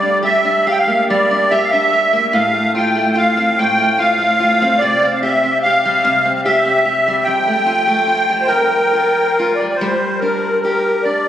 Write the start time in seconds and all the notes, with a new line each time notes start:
Already playing: G3 G4 D5
0.02 D4
0.23 G4 E5
0.45 D4
0.66 G4 F5
0.71 G5
0.79 F5
0.88 A#3
1.09 G3 D5
1.31 D4
1.50 G4 E5
1.63 F5
1.71 D4 E5
1.93 G4
2.13 A#3
2.33 A2 F5
2.53 A3
2.75 F4 G5
2.95 A3
3.11 G5
3.15 F4 F5
3.37 C4
3.58 A2 G5
3.77 A3
3.98 F4 F5
4.19 A3
4.40 F4
4.62 C4
4.79 C3 D5
5.03 C4
5.13 F5
5.21 G4 E5
5.44 C4
5.62 G4 F5
5.85 G3
6.05 C3
6.25 C4
6.34 F5
6.44 G4 E5
6.65 C4
6.85 G4
7.08 G3
7.23 F2 G5
7.47 A3
7.66 F4
7.87 A3
8.07 F4
8.30 G3
8.41 C5
8.48 F2 A#4
8.93 F4
9.39 F4
9.55 D5
9.61 G3
9.69 D5
9.76 C5
9.81 G3
10.19 D4 A#4
10.61 G4 A#4
11.03 D4 D5